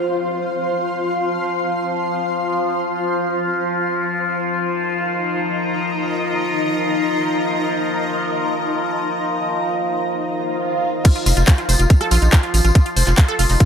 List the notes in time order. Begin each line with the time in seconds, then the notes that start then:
Already playing: F3 F4 C5 F5 C6, downlifter
4.24 D#4
4.34 A#4
4.45 A#5
4.52 D#5
10.20 swell
11.05 F3 F4, kick, closed hi-hat, crash, tambourine
11.16 F4, closed hi-hat
11.26 F1 F4, open hi-hat, tambourine
11.37 F1 F4, closed hi-hat, tambourine
11.47 F4, kick, cross-stick, clap, closed hi-hat, tambourine
11.58 F4, closed hi-hat
11.69 F1 C5, open hi-hat, tambourine
11.79 F1 F4, closed hi-hat, tambourine
11.90 F5, kick, closed hi-hat, tambourine
12.01 A4, cross-stick, closed hi-hat
12.11 A#1 F4, open hi-hat, tambourine
12.22 A#1 D#4, closed hi-hat, tambourine
12.33 F4, kick, clap, closed hi-hat
12.43 F4, closed hi-hat
12.54 A1 F4, open hi-hat, tambourine
12.65 A1 F4, cross-stick, closed hi-hat, tambourine
12.75 F4, kick, closed hi-hat, tambourine
12.86 F4, closed hi-hat
12.96 F1 C5, open hi-hat, tambourine
13.07 F1 F4, clap, closed hi-hat, tambourine
13.18 F5, kick, cross-stick, clap, closed hi-hat
13.28 A4, closed hi-hat
13.39 F1 F4, open hi-hat, tambourine
13.49 F1 D#4, open hi-hat, tambourine
13.60 F4, kick, closed hi-hat, tambourine